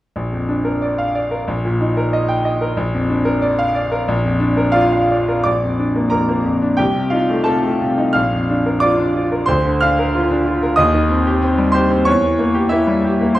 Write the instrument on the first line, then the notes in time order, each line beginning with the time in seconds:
grand piano
0.16 A#1
0.32 F2
0.49 D4
0.65 A#4
0.82 D5
0.98 F5
1.15 D5
1.31 A#4
1.48 A#1
1.65 A#2
1.81 D#4
1.97 A#4
2.13 D#5
2.28 G5
2.45 D#5
2.61 A#4
2.77 A#1
2.94 F2
3.10 D4
3.25 A#4
3.42 D5
3.59 F5
3.75 D5
3.92 A#4
4.08 A#1
4.25 F2
4.40 D4
4.57 A#4
4.72 F4 D5 F5
4.92 F5
5.11 D5
5.28 A#4
5.44 A#1 D5 D6
5.63 F2
5.79 D4
5.96 A#3
6.10 F2 A#4 A#5
6.29 A#3
6.45 F2
6.62 D4
6.77 C2 G4 G5
6.97 C3
7.10 D#4 F4 F5
7.30 A3
7.44 C3 A4 A5
7.63 A3
7.81 C3
7.98 D#4
8.13 A#1 F5 F6
8.32 F2
8.50 D4
8.66 A#4
8.80 F4 D5 D6
8.98 D4
9.15 F4
9.32 A#4
9.46 D2 C5 C6
9.66 D3
9.81 D4 F5 F6
9.99 A#4
10.15 F4
10.31 D4
10.46 F4
10.63 A#4
10.76 D#2 D#5 D#6
10.94 D#3
11.09 C4
11.27 G4
11.42 C4
11.58 G3
11.72 G4 C5 C6
11.90 C4
12.05 E2 C#5 C#6
12.23 E3
12.39 A#3
12.54 G4
12.69 A#3 E4 E5
12.87 G3
13.04 G4
13.21 A#3
13.35 C5 C6